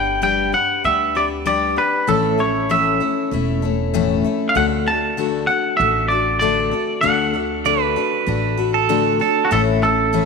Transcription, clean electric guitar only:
Already playing: G5
0.23 G5
0.54 F#5
0.85 E5
1.17 D5
1.47 D5
1.78 B4
2.09 A4
2.40 C#5
2.71 E5
4.49 F5
4.57 F#5
4.88 A5
5.47 F#5
5.77 E5
6.08 D5
6.39 D5
7.01 F#5
9.45 F#4
9.52 A4
9.83 A4

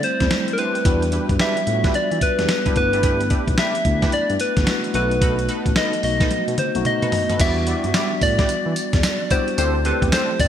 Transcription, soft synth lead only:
0.04 C5
0.53 A#4
0.59 B4
1.41 E5
1.95 D5
2.22 B4
2.77 B4
3.59 E5
4.13 D5
4.41 B4
4.95 B4
5.77 D#5
6.04 D#5
6.59 C5
6.86 D#5
7.41 E5
8.23 D5
9.31 C5
9.59 C5
9.86 B4
10.13 C5
10.40 D5

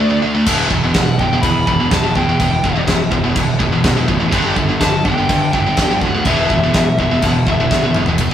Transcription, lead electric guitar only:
Already playing: D5
0.95 F#5
1.19 G5
1.41 B5
1.67 B5
1.90 A5
2.16 G5
4.80 A5
5.05 G5
5.53 G5
6.01 F#5
6.25 E5
7.00 E5
7.24 F#5
7.48 E5

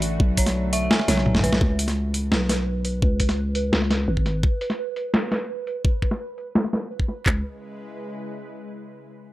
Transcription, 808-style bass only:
Already playing: A1
0.20 B1
1.08 B1
1.61 C#2
2.32 B1
3.02 C#2
3.73 C#2
4.08 G#1
7.26 C#2

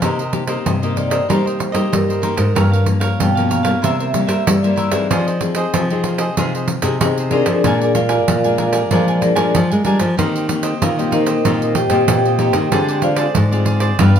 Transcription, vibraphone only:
0.67 D#5
0.96 D5
1.30 C5
1.93 A#4
3.20 G5
3.51 F5
3.84 E5
4.47 D5
7.02 D#4 G#4 C5 D#5
7.31 D4 G#4 A#4 D5
7.96 F4 A#4 D5 F5
8.29 F4 A#4 D5 F5
9.21 D4 G#4 A#4 D5
10.83 F4 F5
11.13 D#4 A#4 C5 D#5
11.76 G4 C5 D#5 G5
12.10 G4 C5 D#5 G5
13.03 F4 C5 D5 F5

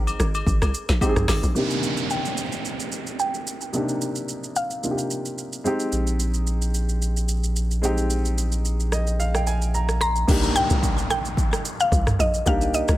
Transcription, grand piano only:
Already playing: G#3 C4 D#4 A#4
1.01 G#3 C4 D#4 G4
1.09 G#4
1.55 C3 A#3 D4 D#4 G4
3.73 C3 A#3 D4 D#4 G4
4.83 C3 A#3 D4 D#4 F4
4.91 G4
5.64 G#3 C4 D#4 G4
7.82 G#3 C4 D#4 G4
8.93 D#5
9.20 F5
9.35 G5
9.47 G#5
9.75 A#5
10.02 C6
10.27 A#3 D4 D#4 G4
12.46 A#3 D4 D#4 G4

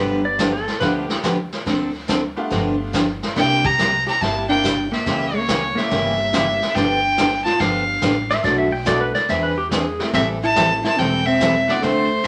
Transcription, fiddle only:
Already playing: B4
3.37 G5
3.66 A#5
4.08 A#5
4.21 A5
4.49 G5
4.93 E5
5.36 C#5
5.77 E5
6.74 G5
7.44 A5
7.60 F5
10.14 E5
10.43 A5
10.85 A5
10.99 G5
11.26 E5
11.70 D5
11.83 C5

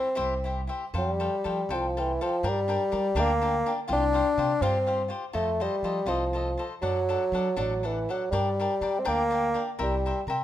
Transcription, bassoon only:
Already playing: C4
0.98 G3
1.73 F3
1.99 E3
2.22 F3
2.48 G3
3.20 A#3
3.93 D4
4.62 C4
5.34 A3
5.62 G3
6.09 F3
6.82 F#3
7.58 F#3
7.85 E3
8.10 F#3
8.31 G3
8.99 C4
9.07 A#3
9.82 G3

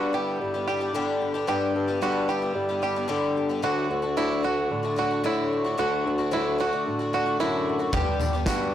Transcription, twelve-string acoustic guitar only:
Already playing: G2 D3 G3 B3 D4 G4
0.13 G3 B3 D4 G4
0.54 G3 B3 D4 G4
0.67 G3 B3 D4 G4
0.80 G3 B3 D4 G4
0.94 G2 D3 G3 B3 D4 G4
1.34 G3 B3 D4 G4
1.47 G2 D3 G3 B3 D4 G4
1.88 G3 B3 D4 G4
2.01 G2 D3 G3 B3 D4 G4
2.28 G3 B3 D4 G4
2.42 G3 B3 D4 G4
2.69 G3 B3 D4 G4
2.82 G3 B3 D4 G4
2.96 G3 B3 D4 G4
3.08 G2 D3 G3 B3 D4 G4
3.49 G3 B3 D4 G4
3.62 D3 F#3 A3 D4 F#4
4.02 A3 D4 F#4
4.17 D3 F#3 A3 D4 F#4
4.43 F#3 A3 D4 F#4
4.83 A3 D4 F#4
4.96 F#3 A3 D4 F#4
5.11 A3 D4 F#4
5.24 D3 F#3 A3 D4 F#4
5.65 A3 D4 F#4
5.78 D3 F#3 A3 D4 F#4
6.18 A3 D4 F#4
6.31 D3 F#3 A3 D4 F#4
6.58 F#3 A3 D4 F#4
6.73 A3 D4 F#4
6.99 A3 D4 F#4
7.13 F#3 A3 D4 F#4
7.26 A3 D4 F#4
7.40 D3 F#3 A3 D4 F#4
7.79 A3 D4 F#4
7.93 G2 D3 G3 B3 D4 G4
8.33 G3 B3 D4 G4
8.47 G2 D3 G3 B3 D4 G4

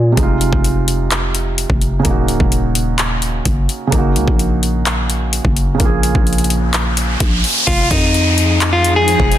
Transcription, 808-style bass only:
Already playing: A#2
0.17 F1
0.53 F1
1.70 F1
1.93 F#1
2.05 D#1
2.28 C#1
2.40 D#1
3.45 F#1
3.92 F#1
4.16 C#2
4.28 A#1
5.45 F#1
5.80 A#1
6.15 A#1
7.20 A#1
7.67 F1
7.91 F2
9.20 F1

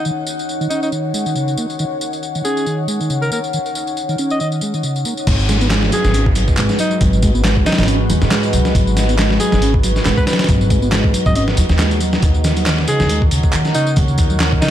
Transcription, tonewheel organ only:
0.06 D#3
0.61 D#3
0.70 C#4
0.92 D#3
1.14 G#3
1.26 D#3
1.36 C#3
1.58 A#3
1.80 D#3
2.35 D#3
2.45 C#4
2.67 D#3
2.88 G#3
3.01 D#3
3.10 C#3
3.32 A#3
3.54 D#3
4.09 D#3
4.19 C#4
4.41 D#3
4.63 G#3
4.74 D#3
4.84 C#3
5.06 A#3
5.49 G#3
5.61 B3
5.71 G#3
5.92 F#3
6.14 C#4
6.36 F#3
6.58 G#3
6.79 F#3
7.23 G#3
7.35 B3
7.44 G#3
7.66 F#3
7.88 C#4
8.09 F#3
8.31 G#3
8.53 F#3
8.97 G#3
9.09 B3
9.19 G#3
9.40 F#3
9.62 C#4
9.84 F#3
10.05 G#3
10.27 F#3
10.70 G#3
10.82 B3
10.92 G#3
11.14 F#3
11.36 C#4
11.57 F#3
11.79 G#3
12.01 F#3
12.44 D#3
12.57 F#3
12.66 D#3
12.89 C#3
13.11 G#3
13.32 C#3
13.53 D#3
13.75 C#3
14.19 D#3
14.31 F#3
14.41 D#3
14.63 C#3

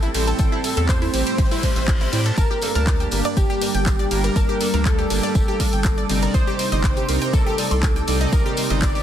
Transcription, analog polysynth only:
0.14 A2 G3 C4 E4 C5
0.64 A2 G3 C4 E4 A4
0.77 A2 G3 C4 E4 A4
1.14 A2 G3 C4 E4 G4
1.63 A2 G3 C4 E4 G4
2.13 G2 G3 C4 E4 D5
2.62 G2 G3 A#3 D4 A4
2.75 G2 G3 A#3 D4 A5
3.12 G2 G3 A#3 D4 G4
3.62 G2 G3 A#3 D4 A#4
4.11 G2 G3 A#3 D4 A#4
4.61 G2 G3 A#3 D4 A4
4.74 G2 G3 A#3 D4 A4
5.10 G2 G3 A#3 D4 G4
5.60 G2 G3 A#3 D4 A#4
6.09 C3 G3 C4 D#4 D5
6.59 C3 G3 C4 D#4 C5
6.72 C3 G3 C4 D#4 C5
7.09 C3 G3 C4 D#4 A#4
7.58 C3 G3 C4 D#4 D5
8.08 C3 G3 C4 D#4 D5
8.57 C3 G3 C4 D#4 C5
8.70 C3 G3 C4 D#4 C5

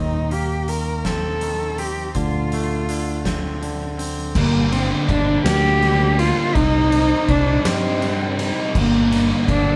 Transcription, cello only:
Already playing: D#4
0.32 G4
0.69 A#4
1.05 A4
1.79 G4
2.16 F4
4.35 A#3
4.72 C4
5.10 D4
5.45 G4
6.19 F4
6.55 D#4
7.30 D4
7.67 C4
8.77 A#3
9.49 D4

